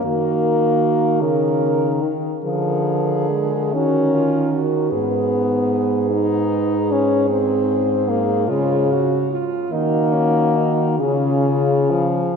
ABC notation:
X:1
M:6/8
L:1/8
Q:3/8=50
K:D#m
V:1 name="French horn"
A4- A z | A3 A3 | B3 B3 | ^B3 c2 z |
F3 G3 |]
V:2 name="French horn"
F3 A2 z | G3 F E F | G6- | G3 E F E |
D C D E2 z |]
V:3 name="French horn"
A,3 C,2 D, | E,2 G, C2 z | B,3 D2 C | ^B,2 A, G, z2 |
A,3 C,2 E, |]
V:4 name="French horn" clef=bass
D,4- D, z | =D,3 ^D,3 | G,,6- | G,,3 C,2 z |
D,3 C,3 |]